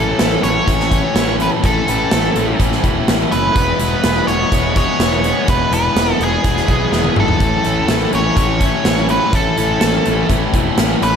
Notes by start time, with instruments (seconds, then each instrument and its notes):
Already playing: picked electric bass A1, overdriven electric guitar A2 E3 A3 C#4 E4, lead electric guitar A4
0.18 picked electric bass A1, overdriven electric guitar A2 E3 A3 C#4 E4, snare, closed hi-hat
0.42 picked electric bass A1, overdriven electric guitar A2 E3 A3 C#4 E4, lead electric guitar C#5, closed hi-hat
0.67 picked electric bass A1, overdriven electric guitar A2 E3 A3 C#4 E4, kick, closed hi-hat
0.80 snare
0.91 overdriven electric guitar A2 E3 A3 C#4 E4, kick, closed hi-hat
1.15 picked electric bass A1, overdriven electric guitar A2 E3 A3 C#4 E4, snare, closed hi-hat
1.39 overdriven electric guitar A2 E3 A3 C#4 E4, lead electric guitar B4, closed hi-hat
1.63 picked electric bass A1, overdriven electric guitar A2 E3 A3 C#4 E4, lead electric guitar A4, kick, closed hi-hat
1.87 picked electric bass A1, overdriven electric guitar A2 E3 A3 C#4 E4, closed hi-hat
2.11 picked electric bass A1, overdriven electric guitar A2 E3 A3 C#4 E4, snare, closed hi-hat
2.36 picked electric bass A1, overdriven electric guitar A2 E3 A3 C#4 E4, closed hi-hat
2.59 picked electric bass A1, overdriven electric guitar A2 E3 A3 C#4 E4, kick, closed hi-hat
2.72 snare
2.83 picked electric bass E1, overdriven electric guitar A2 E3 A3 C#4 E4, kick, closed hi-hat
3.07 picked electric bass A1, overdriven electric guitar A2 E3 A3 C#4 E4, snare, closed hi-hat
3.31 picked electric bass F#1, overdriven electric guitar A2 E3 A3 C#4 E4, lead electric guitar B4, closed hi-hat
3.55 picked electric bass E1, overdriven electric guitar E2 B2 E3 G#3 B3 E4, kick, closed hi-hat
3.79 picked electric bass E1, overdriven electric guitar E2 B2 E3 G#3 B3 E4, closed hi-hat
4.03 picked electric bass E1, overdriven electric guitar E2 B2 E3 G#3 B3 E4, snare, closed hi-hat
4.27 picked electric bass E1, overdriven electric guitar E2 B2 E3 G#3 B3 E4, lead electric guitar C#5, closed hi-hat
4.51 picked electric bass E1, overdriven electric guitar E2 B2 E3 G#3 B3 E4, kick, closed hi-hat
4.75 overdriven electric guitar E2 B2 E3 G#3 B3 E4, lead electric guitar C#5, kick, closed hi-hat
4.99 picked electric bass E1, overdriven electric guitar E2 B2 E3 G#3 B3 E4, snare, closed hi-hat
5.23 overdriven electric guitar E2 B2 E3 G#3 B3 E4, closed hi-hat
5.48 picked electric bass E1, overdriven electric guitar E2 B2 E3 G#3 B3 E4, lead electric guitar B4, kick, closed hi-hat
5.71 picked electric bass E1, overdriven electric guitar E2 B2 E3 G#3 B3 E4, lead electric guitar B4, closed hi-hat
5.96 picked electric bass E1, overdriven electric guitar E2 B2 E3 G#3 B3 E4, snare, closed hi-hat
6.20 picked electric bass E1, overdriven electric guitar E2 B2 E3 G#3 B3 E4, lead electric guitar G#4, closed hi-hat
6.44 picked electric bass E1, overdriven electric guitar E2 B2 E3 G#3 B3 E4, kick, closed hi-hat
6.57 snare
6.68 picked electric bass B1, overdriven electric guitar E2 B2 E3 G#3 B3 E4, kick, closed hi-hat
6.92 picked electric bass E1, overdriven electric guitar E2 B2 E3 G#3 B3 E4, snare
7.04 high tom
7.16 picked electric bass G#1, overdriven electric guitar E2 B2 E3 G#3 B3 E4, lead electric guitar A4, mid tom
7.28 floor tom
7.40 picked electric bass A1, overdriven electric guitar A2 E3 A3 C#4 E4, kick, closed hi-hat
7.64 picked electric bass A1, overdriven electric guitar A2 E3 A3 C#4 E4, closed hi-hat
7.88 picked electric bass A1, overdriven electric guitar A2 E3 A3 C#4 E4, snare, closed hi-hat
8.12 picked electric bass A1, overdriven electric guitar A2 E3 A3 C#4 E4, lead electric guitar C#5, closed hi-hat
8.36 picked electric bass A1, overdriven electric guitar A2 E3 A3 C#4 E4, kick, closed hi-hat
8.60 overdriven electric guitar A2 E3 A3 C#4 E4, kick, closed hi-hat
8.85 picked electric bass A1, overdriven electric guitar A2 E3 A3 C#4 E4, snare, closed hi-hat
9.08 overdriven electric guitar A2 E3 A3 C#4 E4, lead electric guitar B4, closed hi-hat
9.32 picked electric bass A1, overdriven electric guitar A2 E3 A3 C#4 E4, lead electric guitar A4, kick, closed hi-hat
9.56 picked electric bass A1, overdriven electric guitar A2 E3 A3 C#4 E4, closed hi-hat
9.80 picked electric bass A1, overdriven electric guitar A2 E3 A3 C#4 E4, snare, closed hi-hat
10.05 picked electric bass A1, overdriven electric guitar A2 E3 A3 C#4 E4, closed hi-hat
10.29 picked electric bass A1, overdriven electric guitar A2 E3 A3 C#4 E4, kick, closed hi-hat
10.53 picked electric bass E1, overdriven electric guitar A2 E3 A3 C#4 E4, kick, closed hi-hat
10.77 picked electric bass A1, overdriven electric guitar A2 E3 A3 C#4 E4, snare, closed hi-hat
11.02 picked electric bass A1, overdriven electric guitar A2 E3 A3 C#4 E4, lead electric guitar B4, closed hi-hat